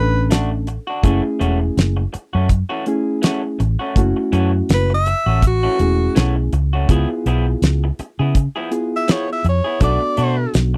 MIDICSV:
0, 0, Header, 1, 8, 480
1, 0, Start_track
1, 0, Key_signature, 3, "minor"
1, 0, Tempo, 730994
1, 683, Time_signature, 4, 2, 24, 8
1, 7076, End_track
2, 0, Start_track
2, 0, Title_t, "Tenor saxophone"
2, 0, Program_c, 0, 66
2, 0, Note_on_c, 0, 71, 95
2, 200, Note_off_c, 0, 71, 0
2, 3110, Note_on_c, 0, 71, 84
2, 3221, Note_off_c, 0, 71, 0
2, 3245, Note_on_c, 0, 76, 93
2, 3568, Note_off_c, 0, 76, 0
2, 3592, Note_on_c, 0, 66, 86
2, 4044, Note_off_c, 0, 66, 0
2, 5884, Note_on_c, 0, 76, 86
2, 5985, Note_on_c, 0, 73, 74
2, 5995, Note_off_c, 0, 76, 0
2, 6099, Note_off_c, 0, 73, 0
2, 6122, Note_on_c, 0, 76, 82
2, 6210, Note_off_c, 0, 76, 0
2, 6230, Note_on_c, 0, 73, 74
2, 6450, Note_off_c, 0, 73, 0
2, 6462, Note_on_c, 0, 74, 85
2, 6919, Note_off_c, 0, 74, 0
2, 7076, End_track
3, 0, Start_track
3, 0, Title_t, "Reed electric piano"
3, 0, Program_c, 1, 4
3, 0, Note_on_c, 1, 57, 62
3, 0, Note_on_c, 1, 61, 60
3, 0, Note_on_c, 1, 62, 59
3, 0, Note_on_c, 1, 69, 70
3, 436, Note_off_c, 1, 57, 0
3, 439, Note_off_c, 1, 61, 0
3, 439, Note_off_c, 1, 62, 0
3, 440, Note_off_c, 1, 69, 0
3, 677, Note_on_c, 1, 57, 81
3, 682, Note_on_c, 1, 61, 73
3, 686, Note_on_c, 1, 64, 73
3, 686, Note_on_c, 1, 68, 88
3, 1321, Note_off_c, 1, 57, 0
3, 1324, Note_off_c, 1, 61, 0
3, 1326, Note_off_c, 1, 64, 0
3, 1326, Note_off_c, 1, 68, 0
3, 1881, Note_on_c, 1, 57, 73
3, 1884, Note_on_c, 1, 61, 74
3, 1888, Note_on_c, 1, 64, 77
3, 1894, Note_on_c, 1, 68, 82
3, 2357, Note_off_c, 1, 57, 0
3, 2358, Note_off_c, 1, 61, 0
3, 2360, Note_off_c, 1, 64, 0
3, 2363, Note_off_c, 1, 68, 0
3, 2608, Note_on_c, 1, 57, 84
3, 2612, Note_on_c, 1, 61, 76
3, 2615, Note_on_c, 1, 64, 72
3, 2617, Note_on_c, 1, 66, 85
3, 3247, Note_off_c, 1, 57, 0
3, 3249, Note_off_c, 1, 61, 0
3, 3251, Note_off_c, 1, 64, 0
3, 3251, Note_off_c, 1, 66, 0
3, 3803, Note_on_c, 1, 57, 66
3, 3808, Note_on_c, 1, 64, 60
3, 3809, Note_on_c, 1, 61, 57
3, 3814, Note_on_c, 1, 68, 69
3, 4278, Note_off_c, 1, 57, 0
3, 4280, Note_off_c, 1, 64, 0
3, 4281, Note_off_c, 1, 61, 0
3, 4283, Note_off_c, 1, 68, 0
3, 4520, Note_on_c, 1, 59, 77
3, 4522, Note_on_c, 1, 64, 69
3, 4527, Note_on_c, 1, 65, 68
3, 4529, Note_on_c, 1, 68, 82
3, 5163, Note_off_c, 1, 59, 0
3, 5164, Note_off_c, 1, 64, 0
3, 5167, Note_off_c, 1, 65, 0
3, 5168, Note_off_c, 1, 68, 0
3, 5720, Note_on_c, 1, 59, 67
3, 5722, Note_on_c, 1, 64, 58
3, 5724, Note_on_c, 1, 68, 74
3, 5727, Note_on_c, 1, 65, 61
3, 6197, Note_off_c, 1, 59, 0
3, 6198, Note_off_c, 1, 64, 0
3, 6199, Note_off_c, 1, 68, 0
3, 6200, Note_off_c, 1, 65, 0
3, 6436, Note_on_c, 1, 59, 68
3, 6441, Note_on_c, 1, 62, 55
3, 6445, Note_on_c, 1, 66, 60
3, 6448, Note_on_c, 1, 69, 72
3, 7076, Note_off_c, 1, 59, 0
3, 7076, Note_off_c, 1, 62, 0
3, 7076, Note_off_c, 1, 66, 0
3, 7076, Note_off_c, 1, 69, 0
3, 7076, End_track
4, 0, Start_track
4, 0, Title_t, "Clean electric guitar"
4, 0, Program_c, 2, 27
4, 200, Note_on_c, 2, 57, 63
4, 206, Note_on_c, 2, 62, 61
4, 216, Note_on_c, 2, 66, 61
4, 329, Note_off_c, 2, 66, 0
4, 334, Note_off_c, 2, 57, 0
4, 335, Note_off_c, 2, 62, 0
4, 572, Note_on_c, 2, 66, 59
4, 588, Note_on_c, 2, 62, 45
4, 678, Note_on_c, 2, 52, 76
4, 681, Note_off_c, 2, 66, 0
4, 685, Note_off_c, 2, 62, 0
4, 686, Note_on_c, 2, 57, 85
4, 688, Note_on_c, 2, 61, 77
4, 693, Note_on_c, 2, 66, 84
4, 803, Note_off_c, 2, 66, 0
4, 807, Note_off_c, 2, 61, 0
4, 812, Note_off_c, 2, 57, 0
4, 813, Note_off_c, 2, 52, 0
4, 916, Note_on_c, 2, 52, 80
4, 920, Note_on_c, 2, 57, 82
4, 923, Note_on_c, 2, 61, 88
4, 927, Note_on_c, 2, 66, 96
4, 1042, Note_off_c, 2, 66, 0
4, 1047, Note_off_c, 2, 61, 0
4, 1052, Note_off_c, 2, 52, 0
4, 1052, Note_off_c, 2, 57, 0
4, 1532, Note_on_c, 2, 66, 53
4, 1541, Note_on_c, 2, 61, 58
4, 1547, Note_on_c, 2, 57, 53
4, 1634, Note_off_c, 2, 57, 0
4, 1636, Note_off_c, 2, 61, 0
4, 1641, Note_off_c, 2, 66, 0
4, 1769, Note_on_c, 2, 66, 74
4, 1773, Note_on_c, 2, 61, 74
4, 1778, Note_on_c, 2, 57, 68
4, 1780, Note_on_c, 2, 52, 66
4, 1867, Note_off_c, 2, 52, 0
4, 1869, Note_off_c, 2, 57, 0
4, 1873, Note_off_c, 2, 61, 0
4, 1875, Note_off_c, 2, 66, 0
4, 2115, Note_on_c, 2, 52, 69
4, 2123, Note_on_c, 2, 57, 71
4, 2127, Note_on_c, 2, 61, 70
4, 2130, Note_on_c, 2, 66, 76
4, 2243, Note_off_c, 2, 66, 0
4, 2248, Note_off_c, 2, 61, 0
4, 2251, Note_off_c, 2, 57, 0
4, 2252, Note_off_c, 2, 52, 0
4, 2491, Note_on_c, 2, 66, 62
4, 2500, Note_on_c, 2, 61, 53
4, 2506, Note_on_c, 2, 57, 49
4, 2627, Note_off_c, 2, 66, 0
4, 2632, Note_off_c, 2, 61, 0
4, 2635, Note_off_c, 2, 57, 0
4, 2839, Note_on_c, 2, 52, 88
4, 2842, Note_on_c, 2, 57, 86
4, 2845, Note_on_c, 2, 61, 85
4, 2851, Note_on_c, 2, 66, 88
4, 2966, Note_off_c, 2, 66, 0
4, 2969, Note_off_c, 2, 61, 0
4, 2973, Note_off_c, 2, 57, 0
4, 2974, Note_off_c, 2, 52, 0
4, 3456, Note_on_c, 2, 66, 54
4, 3467, Note_on_c, 2, 61, 50
4, 3471, Note_on_c, 2, 57, 40
4, 3563, Note_off_c, 2, 66, 0
4, 3564, Note_off_c, 2, 57, 0
4, 3564, Note_off_c, 2, 61, 0
4, 3698, Note_on_c, 2, 66, 60
4, 3702, Note_on_c, 2, 61, 65
4, 3707, Note_on_c, 2, 57, 56
4, 3710, Note_on_c, 2, 52, 54
4, 3799, Note_off_c, 2, 52, 0
4, 3802, Note_off_c, 2, 57, 0
4, 3804, Note_off_c, 2, 66, 0
4, 3806, Note_off_c, 2, 61, 0
4, 4040, Note_on_c, 2, 52, 61
4, 4047, Note_on_c, 2, 57, 58
4, 4053, Note_on_c, 2, 61, 62
4, 4056, Note_on_c, 2, 66, 62
4, 4170, Note_off_c, 2, 66, 0
4, 4174, Note_off_c, 2, 61, 0
4, 4175, Note_off_c, 2, 52, 0
4, 4175, Note_off_c, 2, 57, 0
4, 4420, Note_on_c, 2, 66, 57
4, 4431, Note_on_c, 2, 61, 54
4, 4436, Note_on_c, 2, 57, 44
4, 4525, Note_off_c, 2, 66, 0
4, 4529, Note_on_c, 2, 53, 75
4, 4530, Note_off_c, 2, 57, 0
4, 4530, Note_off_c, 2, 61, 0
4, 4533, Note_on_c, 2, 59, 75
4, 4534, Note_on_c, 2, 64, 81
4, 4541, Note_on_c, 2, 68, 89
4, 4655, Note_off_c, 2, 68, 0
4, 4659, Note_off_c, 2, 53, 0
4, 4659, Note_off_c, 2, 64, 0
4, 4661, Note_off_c, 2, 59, 0
4, 4771, Note_on_c, 2, 53, 75
4, 4773, Note_on_c, 2, 59, 82
4, 4778, Note_on_c, 2, 64, 84
4, 4779, Note_on_c, 2, 68, 90
4, 4896, Note_off_c, 2, 68, 0
4, 4900, Note_off_c, 2, 53, 0
4, 4901, Note_off_c, 2, 59, 0
4, 4901, Note_off_c, 2, 64, 0
4, 5380, Note_on_c, 2, 68, 59
4, 5390, Note_on_c, 2, 64, 51
4, 5396, Note_on_c, 2, 59, 45
4, 5485, Note_off_c, 2, 68, 0
4, 5486, Note_off_c, 2, 59, 0
4, 5489, Note_off_c, 2, 64, 0
4, 5618, Note_on_c, 2, 68, 75
4, 5624, Note_on_c, 2, 64, 73
4, 5628, Note_on_c, 2, 59, 60
4, 5630, Note_on_c, 2, 53, 61
4, 5718, Note_off_c, 2, 53, 0
4, 5723, Note_off_c, 2, 59, 0
4, 5725, Note_off_c, 2, 64, 0
4, 5725, Note_off_c, 2, 68, 0
4, 5961, Note_on_c, 2, 53, 62
4, 5968, Note_on_c, 2, 59, 66
4, 5972, Note_on_c, 2, 64, 68
4, 5977, Note_on_c, 2, 68, 69
4, 6088, Note_off_c, 2, 68, 0
4, 6093, Note_off_c, 2, 64, 0
4, 6096, Note_off_c, 2, 53, 0
4, 6097, Note_off_c, 2, 59, 0
4, 6332, Note_on_c, 2, 68, 50
4, 6342, Note_on_c, 2, 64, 43
4, 6351, Note_on_c, 2, 59, 43
4, 6439, Note_off_c, 2, 59, 0
4, 6442, Note_off_c, 2, 68, 0
4, 6442, Note_on_c, 2, 57, 65
4, 6443, Note_off_c, 2, 64, 0
4, 6446, Note_on_c, 2, 62, 68
4, 6452, Note_on_c, 2, 66, 72
4, 6566, Note_off_c, 2, 66, 0
4, 6575, Note_off_c, 2, 62, 0
4, 6576, Note_off_c, 2, 57, 0
4, 6680, Note_on_c, 2, 57, 73
4, 6685, Note_on_c, 2, 62, 77
4, 6691, Note_on_c, 2, 66, 86
4, 6803, Note_off_c, 2, 66, 0
4, 6812, Note_off_c, 2, 62, 0
4, 6815, Note_off_c, 2, 57, 0
4, 7076, End_track
5, 0, Start_track
5, 0, Title_t, "Fingered electric bass"
5, 0, Program_c, 3, 33
5, 0, Note_on_c, 3, 33, 79
5, 506, Note_off_c, 3, 33, 0
5, 681, Note_on_c, 3, 30, 85
5, 783, Note_off_c, 3, 30, 0
5, 924, Note_on_c, 3, 28, 75
5, 1105, Note_off_c, 3, 28, 0
5, 1163, Note_on_c, 3, 30, 91
5, 1345, Note_off_c, 3, 30, 0
5, 1541, Note_on_c, 3, 42, 78
5, 1721, Note_off_c, 3, 42, 0
5, 2364, Note_on_c, 3, 33, 77
5, 2464, Note_off_c, 3, 33, 0
5, 2599, Note_on_c, 3, 30, 87
5, 2701, Note_off_c, 3, 30, 0
5, 2841, Note_on_c, 3, 42, 77
5, 3024, Note_off_c, 3, 42, 0
5, 3084, Note_on_c, 3, 30, 88
5, 3367, Note_off_c, 3, 30, 0
5, 3456, Note_on_c, 3, 33, 73
5, 3719, Note_off_c, 3, 33, 0
5, 3806, Note_on_c, 3, 28, 84
5, 3987, Note_off_c, 3, 28, 0
5, 4047, Note_on_c, 3, 35, 76
5, 4262, Note_off_c, 3, 35, 0
5, 4286, Note_on_c, 3, 37, 75
5, 4501, Note_off_c, 3, 37, 0
5, 4525, Note_on_c, 3, 37, 88
5, 4625, Note_off_c, 3, 37, 0
5, 4766, Note_on_c, 3, 35, 77
5, 4947, Note_off_c, 3, 35, 0
5, 5003, Note_on_c, 3, 37, 85
5, 5185, Note_off_c, 3, 37, 0
5, 5381, Note_on_c, 3, 49, 82
5, 5561, Note_off_c, 3, 49, 0
5, 6202, Note_on_c, 3, 41, 82
5, 6304, Note_off_c, 3, 41, 0
5, 6442, Note_on_c, 3, 35, 90
5, 6543, Note_off_c, 3, 35, 0
5, 6685, Note_on_c, 3, 47, 82
5, 6867, Note_off_c, 3, 47, 0
5, 6927, Note_on_c, 3, 35, 86
5, 7076, Note_off_c, 3, 35, 0
5, 7076, End_track
6, 0, Start_track
6, 0, Title_t, "Muted clean electric guitar strokes"
6, 337, Note_on_c, 9, 29, 47
6, 403, Note_off_c, 9, 29, 0
6, 442, Note_on_c, 9, 29, 38
6, 508, Note_off_c, 9, 29, 0
6, 810, Note_on_c, 9, 29, 41
6, 876, Note_off_c, 9, 29, 0
6, 1050, Note_on_c, 9, 29, 48
6, 1116, Note_off_c, 9, 29, 0
6, 1291, Note_on_c, 9, 29, 48
6, 1357, Note_off_c, 9, 29, 0
6, 1397, Note_on_c, 9, 29, 41
6, 1463, Note_off_c, 9, 29, 0
6, 1875, Note_on_c, 9, 29, 42
6, 1941, Note_off_c, 9, 29, 0
6, 2251, Note_on_c, 9, 29, 51
6, 2316, Note_off_c, 9, 29, 0
6, 2358, Note_on_c, 9, 29, 38
6, 2424, Note_off_c, 9, 29, 0
6, 2735, Note_on_c, 9, 29, 41
6, 2801, Note_off_c, 9, 29, 0
6, 2973, Note_on_c, 9, 29, 41
6, 3039, Note_off_c, 9, 29, 0
6, 3217, Note_on_c, 9, 29, 40
6, 3283, Note_off_c, 9, 29, 0
6, 3326, Note_on_c, 9, 29, 35
6, 3391, Note_off_c, 9, 29, 0
6, 3567, Note_on_c, 9, 29, 33
6, 3633, Note_off_c, 9, 29, 0
6, 3807, Note_on_c, 9, 29, 35
6, 3872, Note_off_c, 9, 29, 0
6, 4178, Note_on_c, 9, 29, 49
6, 4243, Note_off_c, 9, 29, 0
6, 4287, Note_on_c, 9, 29, 41
6, 4353, Note_off_c, 9, 29, 0
6, 4662, Note_on_c, 9, 29, 43
6, 4728, Note_off_c, 9, 29, 0
6, 4904, Note_on_c, 9, 29, 42
6, 4970, Note_off_c, 9, 29, 0
6, 5146, Note_on_c, 9, 29, 46
6, 5212, Note_off_c, 9, 29, 0
6, 5250, Note_on_c, 9, 29, 43
6, 5316, Note_off_c, 9, 29, 0
6, 5488, Note_on_c, 9, 29, 37
6, 5554, Note_off_c, 9, 29, 0
6, 5726, Note_on_c, 9, 29, 40
6, 5791, Note_off_c, 9, 29, 0
6, 6096, Note_on_c, 9, 29, 42
6, 6162, Note_off_c, 9, 29, 0
6, 6203, Note_on_c, 9, 29, 35
6, 6269, Note_off_c, 9, 29, 0
6, 6573, Note_on_c, 9, 29, 39
6, 6639, Note_off_c, 9, 29, 0
6, 6811, Note_on_c, 9, 29, 38
6, 6877, Note_off_c, 9, 29, 0
6, 7055, Note_on_c, 9, 29, 46
6, 7076, Note_off_c, 9, 29, 0
6, 7076, End_track
7, 0, Start_track
7, 0, Title_t, "Muted fingered electric bass strokes"
7, 1409, Note_on_c, 9, 29, 39
7, 1475, Note_off_c, 9, 29, 0
7, 5248, Note_on_c, 9, 29, 34
7, 5313, Note_off_c, 9, 29, 0
7, 7076, End_track
8, 0, Start_track
8, 0, Title_t, "Drums"
8, 202, Note_on_c, 9, 42, 85
8, 210, Note_on_c, 9, 38, 103
8, 267, Note_off_c, 9, 42, 0
8, 276, Note_off_c, 9, 38, 0
8, 440, Note_on_c, 9, 42, 52
8, 506, Note_off_c, 9, 42, 0
8, 680, Note_on_c, 9, 36, 111
8, 681, Note_on_c, 9, 42, 75
8, 745, Note_off_c, 9, 36, 0
8, 747, Note_off_c, 9, 42, 0
8, 926, Note_on_c, 9, 42, 56
8, 991, Note_off_c, 9, 42, 0
8, 1165, Note_on_c, 9, 42, 70
8, 1174, Note_on_c, 9, 38, 96
8, 1231, Note_off_c, 9, 42, 0
8, 1239, Note_off_c, 9, 38, 0
8, 1403, Note_on_c, 9, 42, 56
8, 1469, Note_off_c, 9, 42, 0
8, 1637, Note_on_c, 9, 42, 71
8, 1638, Note_on_c, 9, 36, 75
8, 1702, Note_off_c, 9, 42, 0
8, 1704, Note_off_c, 9, 36, 0
8, 1878, Note_on_c, 9, 42, 55
8, 1944, Note_off_c, 9, 42, 0
8, 2119, Note_on_c, 9, 42, 80
8, 2128, Note_on_c, 9, 38, 103
8, 2185, Note_off_c, 9, 42, 0
8, 2194, Note_off_c, 9, 38, 0
8, 2364, Note_on_c, 9, 42, 52
8, 2429, Note_off_c, 9, 42, 0
8, 2600, Note_on_c, 9, 36, 104
8, 2603, Note_on_c, 9, 42, 79
8, 2665, Note_off_c, 9, 36, 0
8, 2669, Note_off_c, 9, 42, 0
8, 2841, Note_on_c, 9, 42, 59
8, 2907, Note_off_c, 9, 42, 0
8, 3081, Note_on_c, 9, 42, 77
8, 3089, Note_on_c, 9, 38, 97
8, 3146, Note_off_c, 9, 42, 0
8, 3155, Note_off_c, 9, 38, 0
8, 3323, Note_on_c, 9, 42, 61
8, 3389, Note_off_c, 9, 42, 0
8, 3562, Note_on_c, 9, 36, 79
8, 3562, Note_on_c, 9, 42, 84
8, 3627, Note_off_c, 9, 36, 0
8, 3627, Note_off_c, 9, 42, 0
8, 3804, Note_on_c, 9, 42, 65
8, 3869, Note_off_c, 9, 42, 0
8, 4045, Note_on_c, 9, 42, 81
8, 4054, Note_on_c, 9, 38, 102
8, 4111, Note_off_c, 9, 42, 0
8, 4119, Note_off_c, 9, 38, 0
8, 4285, Note_on_c, 9, 42, 58
8, 4350, Note_off_c, 9, 42, 0
8, 4523, Note_on_c, 9, 42, 78
8, 4524, Note_on_c, 9, 36, 107
8, 4589, Note_off_c, 9, 36, 0
8, 4589, Note_off_c, 9, 42, 0
8, 4767, Note_on_c, 9, 42, 58
8, 4833, Note_off_c, 9, 42, 0
8, 5006, Note_on_c, 9, 42, 78
8, 5014, Note_on_c, 9, 38, 101
8, 5072, Note_off_c, 9, 42, 0
8, 5080, Note_off_c, 9, 38, 0
8, 5246, Note_on_c, 9, 42, 55
8, 5312, Note_off_c, 9, 42, 0
8, 5482, Note_on_c, 9, 36, 82
8, 5482, Note_on_c, 9, 42, 71
8, 5548, Note_off_c, 9, 36, 0
8, 5548, Note_off_c, 9, 42, 0
8, 5723, Note_on_c, 9, 42, 59
8, 5789, Note_off_c, 9, 42, 0
8, 5962, Note_on_c, 9, 42, 80
8, 5971, Note_on_c, 9, 38, 108
8, 6028, Note_off_c, 9, 42, 0
8, 6036, Note_off_c, 9, 38, 0
8, 6202, Note_on_c, 9, 42, 51
8, 6267, Note_off_c, 9, 42, 0
8, 6439, Note_on_c, 9, 42, 78
8, 6441, Note_on_c, 9, 36, 106
8, 6504, Note_off_c, 9, 42, 0
8, 6507, Note_off_c, 9, 36, 0
8, 6678, Note_on_c, 9, 42, 59
8, 6744, Note_off_c, 9, 42, 0
8, 6919, Note_on_c, 9, 42, 75
8, 6928, Note_on_c, 9, 38, 96
8, 6985, Note_off_c, 9, 42, 0
8, 6993, Note_off_c, 9, 38, 0
8, 7076, End_track
0, 0, End_of_file